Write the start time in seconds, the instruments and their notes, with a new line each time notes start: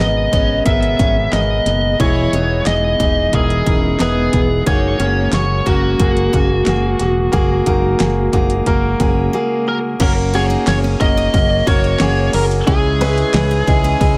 Already playing: grand piano G#2 A#4, tonewheel organ B2 G#3 B3 G#4
0.00 fingered electric bass G#1, grand piano B3 G#4 B4, lead electric guitar D#5
0.32 fingered electric bass G#1, grand piano B3 G#4 C#5, steel-string acoustic guitar C#4, kick, closed hi-hat
0.65 fingered electric bass G#1, grand piano B3 G#4 A#4, steel-string acoustic guitar B3, lead electric guitar E5, kick, closed hi-hat
0.83 closed hi-hat
0.99 fingered electric bass G#1, grand piano B3 G#4 C#5, steel-string acoustic guitar C#4, kick, closed hi-hat
1.32 fingered electric bass G#1, grand piano B3 G#4 A#4, lead electric guitar D#5, snare, clap, closed hi-hat
1.65 fingered electric bass F#1, grand piano B3 G#4 A#4, snare, closed hi-hat
1.99 fingered electric bass E1, tonewheel organ E3 G#3 B3, grand piano E3 E4 G#4 D#5, steel-string acoustic guitar E4, lead electric guitar C#5, kick, closed hi-hat
2.33 fingered electric bass E1, grand piano B3 D#4 G#4, steel-string acoustic guitar D#4, closed hi-hat
2.66 fingered electric bass E1, grand piano D#4 E4 G#4, lead electric guitar D#5, snare, clap, closed hi-hat
2.99 fingered electric bass E1, grand piano E3 D#4 G#4, steel-string acoustic guitar D#4, kick, closed hi-hat
3.32 fingered electric bass E1, grand piano D#4 E4 A#4, lead electric guitar G#4, kick, closed hi-hat
3.50 closed hi-hat
3.66 fingered electric bass E1, steel-string acoustic guitar C#4, grand piano D#4 E4 A#4, kick, closed hi-hat
4.00 fingered electric bass E1, steel-string acoustic guitar B3, grand piano D#4 E4 B4, lead electric guitar G#4, snare, clap, closed hi-hat
4.33 fingered electric bass E1, grand piano D#4 E4 G#4, kick, snare, closed hi-hat
4.66 fingered electric bass F#1, tonewheel organ C#3 A#3 F#4, grand piano A#3 F#4 G#4, steel-string acoustic guitar D#4, lead electric guitar C#5, kick, closed hi-hat
4.99 fingered electric bass F#1, grand piano A#3 F#4 G#4, steel-string acoustic guitar C#4, closed hi-hat
5.32 fingered electric bass F#1, grand piano A#3 F#4 G#4, lead electric guitar C#5, snare, clap, closed hi-hat
5.66 fingered electric bass F#1, grand piano A#3 F#4 A#4, steel-string acoustic guitar C#4, lead electric guitar F#4, kick, closed hi-hat
6.00 fingered electric bass F#1, steel-string acoustic guitar A#3, grand piano A#3 F#4 G#4, kick, closed hi-hat
6.17 closed hi-hat
6.33 fingered electric bass F#1, grand piano A#3 F#4 G#4, steel-string acoustic guitar C#4, kick, closed hi-hat
6.66 fingered electric bass F#1, grand piano A#3 F#4 G#4, snare, clap, closed hi-hat
6.99 fingered electric bass E1, grand piano A#3 F#4 G#4, snare, closed hi-hat
7.32 fingered electric bass F#1, grand piano A#3 F#4 G#4, steel-string acoustic guitar F#4, kick, closed hi-hat
7.66 fingered electric bass F#1, grand piano A#3 F#4 A#4, steel-string acoustic guitar D#4, kick, closed hi-hat
7.99 fingered electric bass F#1, grand piano A#3 F#4 G#4, snare, clap, closed hi-hat
8.33 fingered electric bass F#1, grand piano A#3 F#4 G#4, steel-string acoustic guitar D#4, kick, closed hi-hat
8.50 closed hi-hat
8.66 fingered electric bass F#1, grand piano A#3 F#4 A#4, kick, closed hi-hat
9.00 fingered electric bass F#1, grand piano A#3 F#4 G#4, steel-string acoustic guitar C#4, kick, closed hi-hat
9.33 steel-string acoustic guitar A#3, grand piano A#3 F#4 G#4
9.67 grand piano A#3 F#4 A#4, lead electric guitar A#4
10.00 fingered electric bass F#1, grand piano A#3 C#4 F#4 A#4, steel-string acoustic guitar C#4, lead electric guitar A#4, kick, crash, ride
10.34 grand piano A#3 C#4 F#4 G#4, lead electric guitar C#5, ride
10.50 steel-string acoustic guitar D#4, ride
10.67 fingered electric bass F#1, grand piano A#3 C#4 F#4 C#5, lead electric guitar C#5, snare, clap, ride
10.84 steel-string acoustic guitar C#4
11.00 fingered electric bass F#1, grand piano A#3 C#4 F#4 A#4, lead electric guitar D#5, kick, ride
11.17 steel-string acoustic guitar D#4, ride
11.34 fingered electric bass F#1, grand piano A#3 C#4 F#4 A#4, kick, ride
11.67 fingered electric bass F#1, grand piano A#3 C#4 F#4 A#4, steel-string acoustic guitar F#4, lead electric guitar C#5, kick, ride
11.84 ride
11.99 fingered electric bass F#1, grand piano A#3 C#4 F#4 G#4, snare, clap, ride
12.33 fingered electric bass F#1, grand piano A#3 C#4 F#4 A#4, lead electric guitar A#4, snare, open hi-hat, ride
12.51 ride
12.66 fingered electric bass C#2, grand piano C#3 G#3 C#4 E4 G#4, lead electric guitar G#4, kick, ride
13.00 grand piano G#3 C#4 E4 B4, steel-string acoustic guitar E4, ride
13.18 ride
13.33 fingered electric bass C#2, grand piano G#3 C#4 E4 G#4, snare, clap, ride
13.51 steel-string acoustic guitar D#4
13.67 fingered electric bass C#2, grand piano G#3 C#4 E4 G#4, kick, ride
13.84 steel-string acoustic guitar C#4, ride
14.00 fingered electric bass C#2, grand piano G#3 C#4 E4 G#4, kick, ride